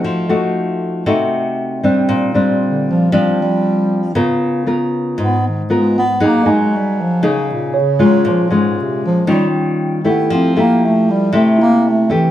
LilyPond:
<<
  \new Staff \with { instrumentName = "Tine electric piano" } { \time 4/4 \key bes \lydian \tempo 4 = 117 r1 | r1 | r1 | r8 aes''2 r8 des''4~ |
des''8 r2. a'8~ | a'8 r2 e'4. | }
  \new Staff \with { instrumentName = "Nylon-string guitar" } { \time 4/4 \key bes \lydian << { <a ees' ges'>8 <a ees' ges'>4. <a ees' ges'>4. <g c' d'>8~ | <g c' d'>8 <g c' d'>4. <g c' d'>2 | <b f' bes'>4 <b f' bes'>4. r8 <b f' bes'>8 r8 | <bes ees' aes'>8 <bes ees' aes'>4. <bes ees' aes'>4 r8 <aes des' f'>8~ |
<aes des' f'>8 <aes des' f'>4. <g des' f'>4. <a e' g'>8~ | <a e' g'>8 <a e' g'>4. <a e' g'>4. <a e' g'>8 | } \\ { f2 c2 | bes,2 f2 | des2 aes,2 | ges2 des2 |
bes,2 ees2 | f2 c2 | } >> }
  \new Staff \with { instrumentName = "Bass clarinet" } { \clef bass \time 4/4 \key bes \lydian r1 | r4 d8 f8 f8 g4. | r2 b8 ees8 aes8 b8 | bes8 aes8 g8 f8 ges8 bes,8 des8 ges8 |
f8 aes,8 c8 f8 g8 r4 b8 | c'8 bes8 a8 g8 a8 bes8 a8 e8 | }
>>